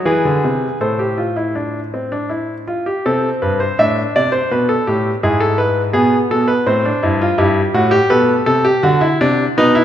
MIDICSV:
0, 0, Header, 1, 2, 480
1, 0, Start_track
1, 0, Key_signature, 0, "minor"
1, 0, Tempo, 744417
1, 515, Time_signature, 3, 2, 24, 8
1, 2437, Tempo, 723764
1, 6460, End_track
2, 0, Start_track
2, 0, Title_t, "Grand piano"
2, 0, Program_c, 0, 0
2, 35, Note_on_c, 0, 52, 77
2, 35, Note_on_c, 0, 71, 65
2, 37, Note_on_c, 0, 68, 72
2, 151, Note_off_c, 0, 52, 0
2, 162, Note_on_c, 0, 50, 70
2, 274, Note_off_c, 0, 50, 0
2, 283, Note_on_c, 0, 48, 66
2, 430, Note_off_c, 0, 48, 0
2, 499, Note_off_c, 0, 71, 0
2, 501, Note_off_c, 0, 68, 0
2, 519, Note_on_c, 0, 45, 54
2, 522, Note_on_c, 0, 69, 57
2, 523, Note_on_c, 0, 72, 62
2, 635, Note_off_c, 0, 69, 0
2, 639, Note_on_c, 0, 67, 57
2, 754, Note_off_c, 0, 67, 0
2, 758, Note_on_c, 0, 65, 56
2, 874, Note_off_c, 0, 65, 0
2, 879, Note_on_c, 0, 64, 55
2, 995, Note_off_c, 0, 64, 0
2, 1002, Note_on_c, 0, 62, 52
2, 1151, Note_off_c, 0, 62, 0
2, 1249, Note_on_c, 0, 60, 53
2, 1362, Note_off_c, 0, 60, 0
2, 1366, Note_on_c, 0, 62, 54
2, 1479, Note_on_c, 0, 64, 55
2, 1481, Note_off_c, 0, 62, 0
2, 1630, Note_off_c, 0, 64, 0
2, 1701, Note_off_c, 0, 45, 0
2, 1703, Note_off_c, 0, 72, 0
2, 1725, Note_on_c, 0, 65, 61
2, 1842, Note_off_c, 0, 65, 0
2, 1846, Note_on_c, 0, 67, 61
2, 1961, Note_off_c, 0, 67, 0
2, 1971, Note_on_c, 0, 60, 67
2, 1972, Note_on_c, 0, 48, 62
2, 1972, Note_on_c, 0, 69, 73
2, 2117, Note_off_c, 0, 48, 0
2, 2117, Note_off_c, 0, 69, 0
2, 2205, Note_on_c, 0, 71, 68
2, 2207, Note_on_c, 0, 43, 56
2, 2318, Note_off_c, 0, 71, 0
2, 2321, Note_on_c, 0, 72, 70
2, 2351, Note_off_c, 0, 43, 0
2, 2427, Note_off_c, 0, 60, 0
2, 2435, Note_off_c, 0, 72, 0
2, 2443, Note_on_c, 0, 62, 63
2, 2444, Note_on_c, 0, 76, 78
2, 2446, Note_on_c, 0, 45, 58
2, 2591, Note_off_c, 0, 76, 0
2, 2592, Note_off_c, 0, 45, 0
2, 2688, Note_on_c, 0, 74, 81
2, 2689, Note_on_c, 0, 48, 58
2, 2795, Note_on_c, 0, 72, 78
2, 2799, Note_off_c, 0, 74, 0
2, 2833, Note_off_c, 0, 48, 0
2, 2912, Note_off_c, 0, 72, 0
2, 2924, Note_on_c, 0, 47, 65
2, 2924, Note_on_c, 0, 71, 74
2, 3036, Note_off_c, 0, 71, 0
2, 3040, Note_on_c, 0, 69, 71
2, 3070, Note_off_c, 0, 47, 0
2, 3154, Note_off_c, 0, 69, 0
2, 3162, Note_on_c, 0, 67, 69
2, 3166, Note_on_c, 0, 45, 61
2, 3309, Note_off_c, 0, 67, 0
2, 3312, Note_off_c, 0, 45, 0
2, 3373, Note_off_c, 0, 62, 0
2, 3400, Note_on_c, 0, 64, 61
2, 3401, Note_on_c, 0, 44, 59
2, 3401, Note_on_c, 0, 68, 70
2, 3514, Note_on_c, 0, 69, 81
2, 3516, Note_off_c, 0, 68, 0
2, 3632, Note_off_c, 0, 69, 0
2, 3632, Note_on_c, 0, 71, 76
2, 3781, Note_off_c, 0, 71, 0
2, 3863, Note_off_c, 0, 64, 0
2, 3864, Note_off_c, 0, 44, 0
2, 3866, Note_on_c, 0, 47, 69
2, 3866, Note_on_c, 0, 59, 62
2, 3866, Note_on_c, 0, 68, 77
2, 4016, Note_off_c, 0, 68, 0
2, 4017, Note_off_c, 0, 47, 0
2, 4113, Note_on_c, 0, 47, 68
2, 4116, Note_on_c, 0, 69, 74
2, 4226, Note_on_c, 0, 71, 78
2, 4230, Note_off_c, 0, 69, 0
2, 4262, Note_off_c, 0, 47, 0
2, 4333, Note_off_c, 0, 59, 0
2, 4346, Note_off_c, 0, 71, 0
2, 4351, Note_on_c, 0, 45, 66
2, 4351, Note_on_c, 0, 60, 69
2, 4353, Note_on_c, 0, 72, 75
2, 4468, Note_off_c, 0, 60, 0
2, 4476, Note_on_c, 0, 62, 63
2, 4501, Note_off_c, 0, 45, 0
2, 4591, Note_off_c, 0, 62, 0
2, 4591, Note_on_c, 0, 64, 67
2, 4593, Note_on_c, 0, 43, 69
2, 4709, Note_off_c, 0, 64, 0
2, 4716, Note_on_c, 0, 65, 78
2, 4742, Note_off_c, 0, 43, 0
2, 4818, Note_off_c, 0, 72, 0
2, 4825, Note_on_c, 0, 43, 75
2, 4825, Note_on_c, 0, 64, 81
2, 4827, Note_on_c, 0, 67, 65
2, 4831, Note_off_c, 0, 65, 0
2, 4975, Note_off_c, 0, 43, 0
2, 4975, Note_off_c, 0, 64, 0
2, 5065, Note_on_c, 0, 45, 74
2, 5067, Note_on_c, 0, 66, 92
2, 5167, Note_off_c, 0, 67, 0
2, 5177, Note_on_c, 0, 67, 99
2, 5183, Note_off_c, 0, 66, 0
2, 5214, Note_off_c, 0, 45, 0
2, 5298, Note_off_c, 0, 67, 0
2, 5302, Note_on_c, 0, 71, 90
2, 5304, Note_on_c, 0, 69, 69
2, 5305, Note_on_c, 0, 47, 77
2, 5452, Note_off_c, 0, 71, 0
2, 5454, Note_off_c, 0, 47, 0
2, 5533, Note_off_c, 0, 69, 0
2, 5542, Note_on_c, 0, 48, 75
2, 5543, Note_on_c, 0, 69, 91
2, 5661, Note_off_c, 0, 69, 0
2, 5665, Note_on_c, 0, 67, 91
2, 5692, Note_off_c, 0, 48, 0
2, 5783, Note_off_c, 0, 67, 0
2, 5788, Note_on_c, 0, 50, 79
2, 5788, Note_on_c, 0, 66, 96
2, 5905, Note_off_c, 0, 66, 0
2, 5906, Note_on_c, 0, 64, 87
2, 5938, Note_off_c, 0, 50, 0
2, 6025, Note_off_c, 0, 64, 0
2, 6038, Note_on_c, 0, 48, 79
2, 6038, Note_on_c, 0, 62, 90
2, 6187, Note_off_c, 0, 48, 0
2, 6187, Note_off_c, 0, 62, 0
2, 6280, Note_on_c, 0, 47, 74
2, 6282, Note_on_c, 0, 63, 94
2, 6283, Note_on_c, 0, 71, 82
2, 6396, Note_off_c, 0, 63, 0
2, 6398, Note_on_c, 0, 64, 94
2, 6428, Note_off_c, 0, 47, 0
2, 6460, Note_off_c, 0, 64, 0
2, 6460, Note_off_c, 0, 71, 0
2, 6460, End_track
0, 0, End_of_file